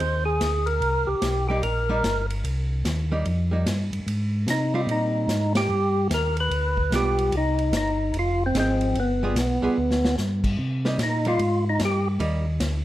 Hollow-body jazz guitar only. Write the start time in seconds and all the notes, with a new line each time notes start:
1.50 G3 A#3 D#4
1.89 G3 A#3 D#4
3.12 G3 A#3 D#4
3.51 G3 A#3 D#4
4.74 G3 C4 D#4
6.93 G3 B3 F4
8.55 F3 C4 D#4 G#4
9.23 G3 B3 F4 G#4
9.62 G3 B3 F4 G#4
10.85 G3 A#3 D#4
11.26 G3 A#3 D#4
12.20 G3 A#3 D#4